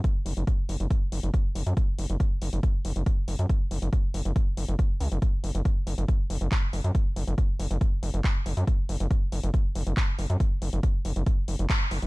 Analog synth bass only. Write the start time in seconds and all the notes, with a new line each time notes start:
0.26 F#1
0.37 F#1
0.69 F#1
0.80 F#1
1.12 F#1
1.23 F#1
1.55 F#1
1.66 F#2
1.98 F#1
2.10 F#1
2.42 F#1
2.53 F#1
2.85 F#1
2.96 F#1
3.28 F#1
3.39 F#2
3.71 F#1
3.82 F#1
4.14 F#1
4.25 F#1
4.57 F#1
4.68 F#1
5.00 C#2
5.12 F#1
5.44 F#1
5.55 F#1
5.87 F#1
5.98 F#1
6.30 F#1
6.41 F#1
6.73 F#1
6.84 F#2
7.16 F#1
7.27 F#1
7.59 F#1
7.71 F#1
8.03 F#1
8.14 F#1
8.46 F#1
8.57 F#2
8.89 F#1
9.00 F#1
9.32 F#1
9.43 F#1
9.75 F#1
9.87 F#1
10.19 F#1
10.30 F#2
10.62 F#1
10.73 F#1
11.05 F#1
11.16 F#1
11.48 F#1
11.59 F#1
11.91 F#1
12.02 F#1